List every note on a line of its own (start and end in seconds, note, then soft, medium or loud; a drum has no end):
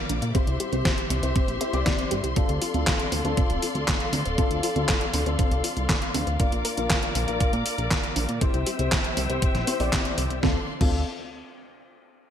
0.00 0.32 A#3 medium
0.00 0.32 D4 medium
0.00 0.32 F4 medium
0.00 0.32 A#4 loud
0.00 0.33 A#4 medium
0.00 0.33 D5 medium
0.00 0.31 F5 medium
0.00 0.31 D6 medium
0.09 0.20 A#1 loud
0.09 0.17 D4 medium
0.09 closed hi-hat medium
0.22 0.33 A#2 medium
0.22 0.30 F5 medium
0.22 closed hi-hat soft
0.35 0.70 C4 medium
0.35 0.46 C4 medium
0.35 0.70 E4 medium
0.35 2.34 G4 medium
0.35 0.70 G4 medium
0.35 2.34 C5 medium
0.35 0.70 C5 medium
0.35 2.34 E5 medium
0.35 6.36 C6 medium
0.35 kick loud
0.35 closed hi-hat medium
0.47 0.58 C2 medium
0.47 closed hi-hat soft
0.60 0.67 G4 loud
0.60 closed hi-hat medium
0.73 0.83 C2 medium
0.73 0.80 C4 medium
0.73 0.89 C4 medium
0.73 0.89 E4 medium
0.73 0.89 G4 medium
0.73 0.89 C5 medium
0.73 closed hi-hat soft
0.85 0.93 C5 medium
0.85 kick loud
0.85 snare loud
0.85 closed hi-hat medium
0.98 closed hi-hat soft
1.10 1.21 C2 medium
1.10 1.18 C4 medium
1.10 closed hi-hat medium
1.23 1.34 C2 medium
1.23 1.58 C4 medium
1.23 1.58 E4 medium
1.23 1.58 G4 medium
1.23 1.58 C5 medium
1.23 1.28 E5 medium
1.23 closed hi-hat soft
1.36 1.40 C4 medium
1.36 kick loud
1.36 closed hi-hat medium
1.48 1.59 A#1 medium
1.48 closed hi-hat soft
1.61 1.70 C4 loud
1.61 1.70 E4 medium
1.61 1.70 G4 medium
1.61 1.70 C5 loud
1.61 1.68 E5 medium
1.61 closed hi-hat medium
1.73 1.84 C2 medium
1.73 1.81 C4 medium
1.73 2.33 C4 medium
1.73 2.33 E4 medium
1.73 2.33 G4 medium
1.73 2.33 D5 loud
1.73 closed hi-hat soft
1.86 1.93 E4 medium
1.86 kick loud
1.86 snare loud
1.86 closed hi-hat medium
1.99 closed hi-hat soft
2.11 2.22 G1 medium
2.11 2.16 G4 loud
2.11 closed hi-hat medium
2.24 2.34 C2 medium
2.24 2.35 G4 medium
2.24 closed hi-hat soft
2.36 2.71 C4 medium
2.36 2.48 C4 medium
2.36 2.71 D4 medium
2.36 2.71 F4 medium
2.36 6.36 A4 medium
2.36 2.71 A4 medium
2.36 6.36 D5 medium
2.36 8.37 F5 medium
2.36 kick loud
2.36 closed hi-hat medium
2.49 2.60 D2 medium
2.49 closed hi-hat soft
2.62 2.69 F4 loud
2.62 open hi-hat loud
2.74 2.85 D2 medium
2.74 2.82 C4 medium
2.74 3.22 C4 medium
2.74 3.22 D4 medium
2.74 3.22 F4 medium
2.74 3.22 A4 medium
2.74 closed hi-hat soft
2.87 2.94 A4 medium
2.87 kick loud
2.87 snare loud
2.87 clap loud
2.87 closed hi-hat medium
3.00 closed hi-hat soft
3.12 3.23 D2 medium
3.12 3.19 C4 medium
3.12 open hi-hat loud
3.25 3.35 D2 medium
3.25 4.35 C4 medium
3.25 4.35 D4 medium
3.25 4.35 F4 medium
3.25 4.35 A4 loud
3.25 3.29 C5 medium
3.25 closed hi-hat soft
3.37 3.42 C4 medium
3.37 kick loud
3.37 closed hi-hat medium
3.50 3.61 D1 medium
3.50 closed hi-hat soft
3.62 3.70 F4 medium
3.62 open hi-hat loud
3.75 3.86 D2 medium
3.75 3.83 C4 medium
3.75 closed hi-hat soft
3.88 3.95 A4 medium
3.88 kick loud
3.88 snare loud
3.88 clap loud
3.88 closed hi-hat medium
4.00 closed hi-hat soft
4.13 4.23 D2 medium
4.13 4.20 C4 medium
4.13 open hi-hat loud
4.25 4.36 D1 medium
4.25 4.33 C5 medium
4.25 closed hi-hat soft
4.38 4.73 C4 medium
4.38 4.49 C4 medium
4.38 4.73 D4 medium
4.38 4.73 F4 medium
4.38 4.73 A4 medium
4.38 kick loud
4.38 closed hi-hat medium
4.51 4.61 D2 medium
4.51 closed hi-hat soft
4.63 4.71 F4 loud
4.63 open hi-hat loud
4.76 4.87 D2 medium
4.76 4.92 C4 medium
4.76 4.83 C4 medium
4.76 4.92 D4 medium
4.76 4.92 F4 medium
4.76 4.92 A4 medium
4.76 closed hi-hat soft
4.88 4.96 A4 medium
4.88 kick loud
4.88 snare loud
4.88 clap loud
4.88 closed hi-hat medium
5.01 closed hi-hat soft
5.14 5.24 D2 loud
5.14 5.21 C4 medium
5.14 open hi-hat loud
5.26 5.37 D2 medium
5.26 6.37 C4 medium
5.26 6.37 D4 medium
5.26 6.37 F4 medium
5.26 6.37 A4 medium
5.26 5.31 C5 medium
5.26 closed hi-hat soft
5.39 5.43 C4 medium
5.39 kick loud
5.39 closed hi-hat medium
5.51 5.62 C2 medium
5.51 closed hi-hat soft
5.64 5.72 F4 medium
5.64 open hi-hat loud
5.77 5.88 C2 medium
5.77 5.84 C4 medium
5.77 closed hi-hat soft
5.89 5.97 A4 medium
5.89 kick loud
5.89 snare loud
5.89 clap medium
5.89 closed hi-hat medium
6.02 closed hi-hat soft
6.14 6.25 D2 medium
6.14 6.22 C4 medium
6.14 open hi-hat loud
6.27 6.38 D2 medium
6.27 6.34 C5 medium
6.27 closed hi-hat soft
6.40 6.74 A#3 medium
6.40 6.51 D4 medium
6.40 6.75 D4 medium
6.40 6.74 F4 medium
6.40 8.39 A#4 medium
6.40 6.75 A#4 medium
6.40 8.39 D5 medium
6.40 8.39 D6 medium
6.40 kick loud
6.40 closed hi-hat medium
6.52 6.63 A#1 medium
6.52 closed hi-hat soft
6.65 6.72 A#4 loud
6.65 open hi-hat loud
6.77 6.88 A#1 medium
6.77 7.25 A#3 medium
6.77 6.85 D4 medium
6.77 7.25 D4 medium
6.77 7.25 F4 medium
6.77 7.25 A#4 medium
6.77 closed hi-hat soft
6.90 6.98 D5 medium
6.90 kick loud
6.90 snare loud
6.90 clap loud
6.90 closed hi-hat medium
7.03 closed hi-hat soft
7.15 7.26 A#1 loud
7.15 7.23 D4 medium
7.15 open hi-hat loud
7.28 7.39 A#1 medium
7.28 8.38 A#3 medium
7.28 8.38 D4 medium
7.28 8.38 F4 medium
7.28 8.38 A#4 loud
7.28 7.32 F5 medium
7.28 closed hi-hat soft
7.40 7.45 D4 medium
7.40 kick loud
7.40 closed hi-hat medium
7.53 7.64 A#2 medium
7.53 closed hi-hat soft
7.66 7.73 A#4 medium
7.66 open hi-hat loud
7.78 7.89 A#1 medium
7.78 7.86 D4 medium
7.78 closed hi-hat soft
7.91 7.98 D5 medium
7.91 kick medium
7.91 snare loud
7.91 clap medium
7.91 closed hi-hat medium
8.04 closed hi-hat soft
8.16 8.27 A#1 loud
8.16 8.24 D4 medium
8.16 open hi-hat loud
8.29 8.39 A#2 medium
8.29 8.36 F5 medium
8.29 closed hi-hat soft
8.41 8.53 C4 medium
8.41 8.76 C4 medium
8.41 8.76 E4 medium
8.41 8.76 G4 medium
8.41 8.76 C5 medium
8.41 10.41 C5 medium
8.41 10.41 E5 medium
8.41 10.41 G5 medium
8.41 10.41 E6 medium
8.41 kick loud
8.41 closed hi-hat medium
8.54 8.65 C2 medium
8.54 closed hi-hat soft
8.66 8.74 G4 loud
8.66 open hi-hat loud
8.79 8.90 C2 medium
8.79 8.87 C4 medium
8.79 8.96 C4 medium
8.79 8.96 E4 medium
8.79 8.96 G4 medium
8.79 8.96 C5 medium
8.79 closed hi-hat soft
8.92 8.99 C5 medium
8.92 kick loud
8.92 snare loud
8.92 clap loud
8.92 closed hi-hat medium
9.04 closed hi-hat soft
9.17 9.28 C2 loud
9.17 9.24 C4 medium
9.17 open hi-hat loud
9.30 9.40 C2 medium
9.30 9.65 C4 medium
9.30 9.65 E4 medium
9.30 9.65 G4 medium
9.30 9.65 C5 medium
9.30 9.34 E5 medium
9.30 closed hi-hat soft
9.42 9.47 C4 medium
9.42 kick loud
9.42 closed hi-hat medium
9.55 9.66 A#1 medium
9.55 snare soft
9.55 closed hi-hat soft
9.67 9.75 C4 loud
9.67 9.77 C4 loud
9.67 9.77 E4 medium
9.67 9.77 G4 medium
9.67 9.77 C5 loud
9.67 open hi-hat loud
9.80 9.91 A#1 medium
9.80 9.87 C4 medium
9.80 10.40 C4 medium
9.80 10.40 E4 medium
9.80 10.40 G4 medium
9.80 10.40 D5 loud
9.80 open hi-hat medium
9.93 10.00 E5 medium
9.93 kick loud
9.93 snare loud
9.93 clap loud
9.93 closed hi-hat medium
10.05 closed hi-hat soft
10.18 10.29 C2 loud
10.18 10.22 C5 loud
10.18 open hi-hat loud
10.30 10.41 C2 medium
10.30 10.42 C5 medium
10.30 closed hi-hat soft
10.43 10.57 D2 medium
10.43 10.57 C4 medium
10.43 10.67 D4 medium
10.43 10.57 D4 medium
10.43 10.57 F4 medium
10.43 10.57 A4 medium
10.43 10.67 D5 medium
10.43 10.67 F5 medium
10.43 10.67 C6 medium
10.43 kick loud
10.43 snare medium
10.81 11.04 D2 loud
10.81 11.04 C4 medium
10.81 11.00 C4 medium
10.81 11.00 D4 medium
10.81 11.00 F4 medium
10.81 11.00 A4 medium
10.81 kick loud
10.81 crash medium